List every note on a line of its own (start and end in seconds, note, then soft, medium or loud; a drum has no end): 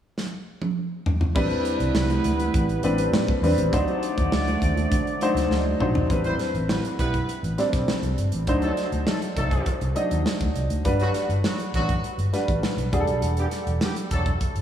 0.18 snare medium
0.62 high tom medium
1.06 floor tom medium
1.21 floor tom medium
1.35 1.47 A1 loud
1.35 2.21 G3 medium
1.35 3.40 G3 medium
1.35 3.40 B3 medium
1.35 2.21 C4 medium
1.35 2.21 D4 medium
1.35 3.40 E4 medium
1.35 2.21 B4 medium
1.35 3.40 B4 medium
1.35 kick loud
1.35 crash medium
1.35 muted conga soft
1.50 closed hi-hat soft
1.50 muted conga soft
1.65 closed hi-hat medium
1.80 1.91 C2 medium
1.80 closed hi-hat soft
1.95 2.17 C2 medium
1.95 snare loud
1.95 muted conga soft
2.10 closed hi-hat soft
2.10 muted conga soft
2.10 high conga medium
2.24 2.48 D2 medium
2.24 closed hi-hat medium
2.24 low conga medium
2.39 closed hi-hat soft
2.39 high conga medium
2.54 2.77 A1 medium
2.54 kick medium
2.54 closed hi-hat medium
2.69 closed hi-hat soft
2.69 muted conga soft
2.83 3.06 A1 loud
2.83 3.26 G3 medium
2.83 3.27 C4 medium
2.83 3.27 D4 medium
2.83 3.27 B4 medium
2.83 closed hi-hat medium
2.83 high conga medium
2.98 closed hi-hat medium
2.98 high conga medium
3.12 3.24 A2 medium
3.12 snare loud
3.12 muted conga soft
3.28 kick medium
3.28 muted conga soft
3.28 high conga medium
3.42 3.54 E2 medium
3.42 3.64 G3 medium
3.42 3.64 C4 medium
3.42 3.65 D4 medium
3.42 3.65 B4 medium
3.42 open hi-hat medium
3.57 3.69 A1 medium
3.57 closed hi-hat medium
3.57 low conga medium
3.72 3.84 D2 loud
3.72 4.58 F#3 medium
3.72 5.77 A3 medium
3.72 5.77 D4 medium
3.72 4.59 D4 medium
3.72 4.59 D#4 medium
3.72 5.76 F#4 medium
3.72 4.59 C5 medium
3.72 5.77 D5 medium
3.72 kick medium
3.72 closed hi-hat medium
3.72 muted conga soft
3.88 closed hi-hat soft
3.88 muted conga soft
4.03 closed hi-hat medium
4.17 4.29 D#2 medium
4.17 kick medium
4.17 closed hi-hat soft
4.32 4.54 D2 medium
4.32 snare loud
4.32 muted conga soft
4.47 closed hi-hat soft
4.47 high conga medium
4.61 4.84 D#2 medium
4.61 kick medium
4.61 closed hi-hat medium
4.61 low conga medium
4.75 closed hi-hat soft
4.75 high conga medium
4.91 5.14 D3 medium
4.91 kick loud
4.91 closed hi-hat medium
4.91 muted conga soft
5.05 closed hi-hat soft
5.05 muted conga soft
5.21 5.64 F#3 medium
5.21 5.64 D4 medium
5.21 5.65 D#4 medium
5.21 5.65 C5 medium
5.21 closed hi-hat medium
5.21 high conga medium
5.35 5.46 D2 medium
5.35 snare soft
5.35 closed hi-hat medium
5.35 high conga medium
5.50 5.73 D2 medium
5.50 snare medium
5.50 muted conga soft
5.65 high conga medium
5.80 6.03 B1 medium
5.80 6.02 F#3 medium
5.80 6.02 D4 medium
5.80 6.02 D#4 medium
5.80 6.02 C5 medium
5.80 mid tom medium
5.94 floor tom medium
5.94 low conga medium
6.09 6.32 A1 medium
6.09 6.95 G3 medium
6.09 6.96 C4 medium
6.09 6.96 D4 medium
6.09 6.96 B4 medium
6.09 kick medium
6.09 closed hi-hat medium
6.24 6.34 G3 medium
6.24 6.35 C4 medium
6.24 6.34 E4 medium
6.24 6.35 C5 medium
6.24 closed hi-hat soft
6.39 snare soft
6.39 closed hi-hat medium
6.54 6.77 A1 medium
6.54 closed hi-hat soft
6.69 6.83 G3 medium
6.69 6.83 B3 medium
6.69 6.83 E4 medium
6.69 6.83 B4 medium
6.69 snare loud
6.85 closed hi-hat medium
6.99 7.22 B1 medium
6.99 7.18 G3 medium
6.99 7.18 B3 medium
6.99 7.18 E4 medium
6.99 7.18 B4 medium
6.99 kick medium
6.99 closed hi-hat medium
7.14 kick medium
7.14 closed hi-hat soft
7.29 closed hi-hat medium
7.43 7.55 A1 medium
7.43 closed hi-hat soft
7.58 8.22 G3 medium
7.58 8.22 C4 medium
7.58 8.23 D4 medium
7.58 8.23 D5 medium
7.58 snare soft
7.58 closed hi-hat medium
7.73 7.84 B1 medium
7.73 kick medium
7.73 snare soft
7.73 closed hi-hat medium
7.88 snare loud
8.02 8.14 C2 medium
8.02 closed hi-hat soft
8.18 8.29 G1 medium
8.18 closed hi-hat medium
8.32 8.44 A1 medium
8.32 closed hi-hat medium
8.47 8.70 D2 medium
8.47 9.33 F#3 medium
8.47 9.33 D4 medium
8.47 9.34 D#4 medium
8.47 9.34 C5 medium
8.47 kick medium
8.47 closed hi-hat medium
8.62 8.72 F#3 medium
8.62 8.72 A3 medium
8.62 8.72 D#4 medium
8.62 8.72 A4 medium
8.62 closed hi-hat soft
8.77 snare soft
8.77 closed hi-hat medium
8.92 9.04 D2 medium
8.92 closed hi-hat soft
9.07 9.20 F#3 medium
9.07 9.20 A3 medium
9.07 9.20 D#4 medium
9.07 9.20 A4 medium
9.07 snare loud
9.22 closed hi-hat medium
9.36 9.59 C2 medium
9.36 9.74 F#3 medium
9.36 9.74 A3 medium
9.36 9.74 D#4 medium
9.36 9.74 A4 medium
9.36 kick medium
9.36 closed hi-hat medium
9.51 kick medium
9.51 closed hi-hat soft
9.66 kick medium
9.66 closed hi-hat medium
9.81 9.93 C2 medium
9.81 closed hi-hat soft
9.95 10.60 F#3 medium
9.95 10.60 D4 medium
9.95 10.60 D#4 medium
9.95 10.60 D#5 medium
9.95 closed hi-hat medium
10.11 10.23 D#2 medium
10.11 closed hi-hat medium
10.26 snare loud
10.40 10.52 D2 medium
10.40 kick medium
10.40 closed hi-hat soft
10.55 10.66 C2 medium
10.55 closed hi-hat medium
10.69 10.81 D2 medium
10.69 closed hi-hat medium
10.85 11.08 G1 medium
10.85 11.70 G3 medium
10.85 11.70 D4 medium
10.85 11.71 F#4 medium
10.85 11.71 B4 medium
10.85 kick medium
10.85 closed hi-hat medium
11.00 11.10 D3 medium
11.00 11.10 F#3 medium
11.00 11.10 B3 medium
11.00 11.10 F#4 medium
11.00 closed hi-hat soft
11.14 snare soft
11.14 closed hi-hat medium
11.29 11.41 G1 medium
11.29 closed hi-hat soft
11.44 11.57 D3 medium
11.44 11.57 F#3 medium
11.44 11.57 B3 medium
11.44 11.57 F#4 medium
11.44 snare medium
11.59 closed hi-hat medium
11.74 11.97 A1 medium
11.74 11.94 D3 medium
11.74 11.94 F#3 medium
11.74 11.94 B3 medium
11.74 11.94 F#4 medium
11.74 kick medium
11.74 closed hi-hat medium
11.89 kick medium
11.89 closed hi-hat soft
12.04 closed hi-hat medium
12.18 12.29 G1 medium
12.18 closed hi-hat soft
12.33 12.91 G3 medium
12.33 12.91 D4 medium
12.33 12.92 F#4 medium
12.33 12.93 B4 medium
12.33 snare soft
12.33 closed hi-hat medium
12.48 12.60 A1 medium
12.48 kick medium
12.48 closed hi-hat soft
12.63 snare medium
12.77 12.89 B1 medium
12.77 closed hi-hat soft
12.92 13.04 E1 medium
12.92 13.88 G3 medium
12.92 13.88 D4 medium
12.92 13.88 F#4 medium
12.92 12.99 G#4 medium
12.92 kick medium
12.92 closed hi-hat medium
13.00 13.91 A4 medium
13.07 13.19 B1 medium
13.07 closed hi-hat soft
13.22 13.44 E1 medium
13.22 closed hi-hat medium
13.37 13.47 D3 medium
13.37 13.47 G3 medium
13.37 13.47 B3 medium
13.37 13.47 G4 medium
13.37 closed hi-hat soft
13.51 snare soft
13.51 closed hi-hat medium
13.67 13.78 E1 medium
13.67 closed hi-hat soft
13.81 13.95 D3 medium
13.81 13.95 G3 medium
13.81 13.95 B3 medium
13.81 13.95 G4 medium
13.81 snare medium
13.96 closed hi-hat medium
14.11 14.34 E1 medium
14.11 14.30 F#3 medium
14.11 14.30 A3 medium
14.11 14.30 D4 medium
14.11 14.30 A4 medium
14.11 kick medium
14.11 closed hi-hat medium
14.26 kick medium
14.26 closed hi-hat soft
14.41 kick medium
14.41 closed hi-hat medium
14.55 14.62 G1 medium
14.55 closed hi-hat soft